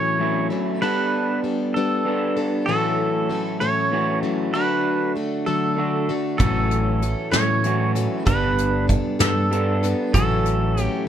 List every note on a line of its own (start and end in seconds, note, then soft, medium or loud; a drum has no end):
0.00 0.17 A2 medium
0.00 0.51 A2 medium
0.00 0.51 E3 medium
0.00 0.18 F#3 medium
0.00 0.51 F#3 medium
0.00 0.20 A3 medium
0.00 0.52 A3 medium
0.00 0.18 C#4 medium
0.00 0.50 C#4 medium
0.00 0.18 E4 medium
0.00 0.50 A4 medium
0.00 0.47 C#5 medium
0.19 0.79 A2 medium
0.19 0.80 F#3 medium
0.19 0.82 A3 medium
0.19 0.80 C#4 medium
0.19 0.81 E4 medium
0.50 0.81 F#3 soft
0.50 0.82 A3 soft
0.50 0.82 C#4 soft
0.50 0.81 A4 medium
0.81 2.03 G3 medium
0.81 1.43 G3 medium
0.81 2.04 B3 medium
0.81 1.43 B3 medium
0.81 1.44 D4 medium
0.81 2.04 D4 medium
0.81 1.45 A4 medium
0.81 2.08 A4 medium
0.81 1.40 B4 loud
1.44 1.75 G3 medium
1.44 1.75 B3 medium
1.44 1.75 D4 medium
1.44 1.75 A4 medium
1.74 2.38 G3 medium
1.74 2.37 B3 medium
1.74 2.36 D4 medium
1.74 2.40 A4 medium
1.74 2.36 A4 medium
2.05 2.66 G3 medium
2.05 2.66 B3 medium
2.05 2.66 D4 medium
2.05 2.69 A4 medium
2.37 2.68 B3 soft
2.37 2.68 D4 medium
2.37 2.68 A4 medium
2.66 3.29 A2 medium
2.66 3.90 A2 medium
2.66 3.90 E3 medium
2.66 3.30 E3 medium
2.66 3.29 F#3 medium
2.66 3.92 A3 loud
2.66 3.30 A3 medium
2.66 3.30 C#4 medium
2.66 3.91 C#4 medium
2.66 3.93 F#4 medium
2.66 3.63 A4 loud
2.66 3.32 A4 medium
3.29 3.61 F#3 medium
3.29 3.60 A3 medium
3.29 3.60 C#4 medium
3.29 3.60 A4 medium
3.60 4.23 A2 medium
3.60 4.23 E3 medium
3.60 4.24 F#3 medium
3.60 4.24 A3 medium
3.60 4.22 C#4 medium
3.60 4.22 A4 medium
3.60 4.19 C#5 medium
3.92 4.52 A2 medium
3.92 4.52 E3 medium
3.92 4.54 A3 medium
3.92 4.53 C#4 medium
3.92 4.55 F#4 medium
4.23 4.53 F#3 soft
4.23 4.54 A3 soft
4.23 4.54 C#4 medium
4.23 4.54 A4 medium
4.53 5.75 D3 medium
4.53 5.16 D3 medium
4.53 5.15 F#3 medium
4.53 5.77 A3 medium
4.53 5.16 A3 medium
4.53 5.77 D4 medium
4.53 5.17 F#4 medium
4.53 5.77 F#4 medium
4.53 5.18 A4 medium
4.53 5.12 B4 loud
5.16 5.47 F#3 medium
5.16 5.47 A3 medium
5.16 5.46 F#4 medium
5.16 5.45 A4 medium
5.46 6.10 D3 medium
5.46 6.09 F#3 medium
5.46 6.10 A3 medium
5.46 6.09 F#4 medium
5.46 6.09 A4 medium
5.46 6.13 A4 medium
5.76 6.38 D3 medium
5.76 6.39 A3 medium
5.76 6.38 D4 medium
5.76 6.39 F#4 medium
6.09 6.38 A3 soft
6.09 6.39 F#4 medium
6.09 6.39 A4 medium
6.38 7.13 A1 medium
6.38 7.62 A2 medium
6.38 7.02 A2 medium
6.38 7.62 E3 medium
6.38 7.02 E3 medium
6.38 7.01 F#3 medium
6.38 7.03 A3 medium
6.38 7.65 A3 medium
6.38 7.02 C#4 medium
6.38 7.63 C#4 medium
6.38 7.63 F#4 medium
6.38 7.35 A4 medium
6.38 7.04 A4 medium
6.38 kick loud
6.38 closed hi-hat medium
6.71 closed hi-hat medium
7.02 7.31 F#3 medium
7.02 7.31 A3 medium
7.02 7.31 C#4 medium
7.02 7.30 A4 medium
7.02 closed hi-hat medium
7.31 7.96 A2 medium
7.31 8.07 A2 medium
7.31 7.95 E3 medium
7.31 7.95 F#3 medium
7.31 7.96 A3 medium
7.31 7.95 C#4 medium
7.31 7.95 A4 medium
7.31 7.91 C#5 medium
7.31 snare loud
7.31 closed hi-hat medium
7.64 8.24 A2 medium
7.64 8.25 E3 medium
7.64 8.26 A3 medium
7.64 8.26 C#4 medium
7.64 8.26 F#4 medium
7.64 closed hi-hat medium
7.95 8.25 F#3 soft
7.95 8.25 A3 soft
7.95 8.26 C#4 medium
7.95 8.25 A4 medium
7.95 closed hi-hat medium
8.25 8.99 G1 medium
8.25 8.87 G3 medium
8.25 9.49 G3 medium
8.25 8.87 B3 medium
8.25 9.49 B3 medium
8.25 8.88 D4 medium
8.25 9.50 D4 medium
8.25 8.89 A4 medium
8.25 9.53 A4 medium
8.25 8.85 B4 loud
8.25 kick loud
8.25 closed hi-hat medium
8.58 closed hi-hat medium
8.88 9.20 G3 medium
8.88 9.19 B3 medium
8.88 9.19 D4 medium
8.88 9.18 A4 medium
8.88 kick medium
8.88 closed hi-hat medium
9.19 9.93 G2 medium
9.19 9.83 G3 medium
9.19 9.82 B3 medium
9.19 9.82 D4 medium
9.19 9.82 A4 medium
9.19 9.87 A4 medium
9.19 snare loud
9.19 closed hi-hat medium
9.51 10.11 G3 medium
9.51 10.12 B3 medium
9.51 10.12 D4 medium
9.51 10.15 A4 medium
9.51 closed hi-hat medium
9.83 10.14 B3 soft
9.83 10.14 D4 medium
9.83 10.14 A4 medium
9.83 closed hi-hat medium
10.12 10.87 A1 medium
10.12 11.08 A2 medium
10.12 10.76 A2 medium
10.12 11.08 E3 medium
10.12 10.76 E3 medium
10.12 10.77 F#3 medium
10.12 10.77 A3 medium
10.12 11.08 A3 medium
10.12 11.08 C#4 medium
10.12 10.76 C#4 medium
10.12 11.08 F#4 medium
10.12 10.82 A4 loud
10.12 10.79 A4 medium
10.12 kick loud
10.12 closed hi-hat medium
10.46 closed hi-hat medium
10.77 11.07 F#3 medium
10.77 11.07 A3 medium
10.77 11.07 C#4 medium
10.77 11.06 A4 medium
10.77 closed hi-hat medium
10.82 11.08 G4 loud